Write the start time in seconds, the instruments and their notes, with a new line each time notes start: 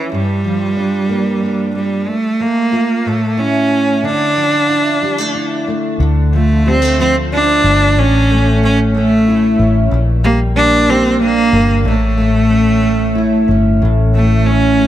Already playing: cello E3, steel-string acoustic guitar C#4 E4
0.12 steel-string acoustic guitar G2, cello G3
0.44 steel-string acoustic guitar F3
0.77 steel-string acoustic guitar D4
1.09 steel-string acoustic guitar A#3
1.43 steel-string acoustic guitar D4
1.75 cello G3, steel-string acoustic guitar A#3
2.08 cello A3
2.40 steel-string acoustic guitar A3, cello A#3
2.72 steel-string acoustic guitar F4
3.05 steel-string acoustic guitar A2, cello A3
3.37 cello C#4, steel-string acoustic guitar E4
3.71 steel-string acoustic guitar C#4
4.03 steel-string acoustic guitar D3, cello D4
4.36 steel-string acoustic guitar F3
4.68 steel-string acoustic guitar E4
5.02 steel-string acoustic guitar G3
5.18 steel-string acoustic guitar A3
5.34 steel-string acoustic guitar E4
5.67 steel-string acoustic guitar A3
6.00 fingered electric bass D2, steel-string acoustic guitar D3
6.33 steel-string acoustic guitar F3, cello A3
6.66 steel-string acoustic guitar G3, cello C4
6.82 steel-string acoustic guitar A3
6.98 steel-string acoustic guitar F3, cello C4
7.32 steel-string acoustic guitar D4, cello D4
7.64 fingered electric bass G1, steel-string acoustic guitar A3
7.97 fingered electric bass A1, steel-string acoustic guitar A2, cello C#4
8.31 steel-string acoustic guitar A3
8.63 steel-string acoustic guitar C#4, cello C#4
8.95 steel-string acoustic guitar A3, cello A3
9.28 steel-string acoustic guitar E4
9.59 fingered electric bass A1, steel-string acoustic guitar C#4
9.91 fingered electric bass A#1, steel-string acoustic guitar A#2
10.24 steel-string acoustic guitar G3, cello A#3
10.56 steel-string acoustic guitar A#3, cello D4
10.88 steel-string acoustic guitar G3, cello C4
11.20 cello A#3, steel-string acoustic guitar D4
11.53 fingered electric bass G1, steel-string acoustic guitar A#3
11.85 fingered electric bass A1, steel-string acoustic guitar A2, cello A3
12.17 steel-string acoustic guitar A3
12.50 steel-string acoustic guitar C#4
12.83 steel-string acoustic guitar A3
13.15 steel-string acoustic guitar E4
13.48 fingered electric bass G1, steel-string acoustic guitar C#4
13.82 fingered electric bass A1, steel-string acoustic guitar A2
14.15 steel-string acoustic guitar A3, cello A3
14.47 cello C#4, steel-string acoustic guitar C#4
14.80 steel-string acoustic guitar A3